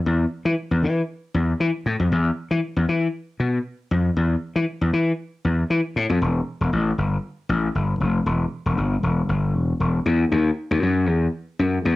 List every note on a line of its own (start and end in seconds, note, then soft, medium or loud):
0.06 0.24 E2 loud
0.45 0.54 E3 loud
0.71 0.84 E2 medium
0.83 1.01 E3 loud
1.34 1.52 E2 medium
1.60 1.70 E3 loud
1.86 1.95 A2 loud
2.00 2.08 F2 loud
2.12 2.30 E2 loud
2.51 2.59 E3 medium
2.77 2.85 E2 medium
2.89 3.07 E3 loud
3.40 3.58 B2 medium
3.91 4.09 F2 medium
4.16 4.34 E2 loud
4.56 4.64 E3 medium
4.81 4.90 E2 medium
4.93 5.11 E3 loud
5.45 5.63 E2 medium
5.70 5.80 E3 loud
5.96 6.06 A2 medium
6.10 6.18 F2 medium
6.22 6.40 E1 loud
6.61 6.69 E1 medium
6.73 6.91 A1 medium
6.98 7.16 G1 medium
7.49 7.67 A1 medium
7.75 7.93 G1 medium
8.00 8.19 F1 medium
8.26 8.44 E1 loud
8.66 8.74 E1 medium
8.78 8.96 G1 medium
9.03 9.21 E1 medium
9.29 9.55 G1 medium
9.55 9.73 E1 medium
9.80 9.98 E1 medium
10.06 10.24 E2 medium
10.32 10.50 D#2 loud
10.71 10.79 D#2 medium
10.83 11.08 F#2 medium
11.08 11.27 E2 medium
11.59 11.78 F#2 medium
11.85 11.96 E2 medium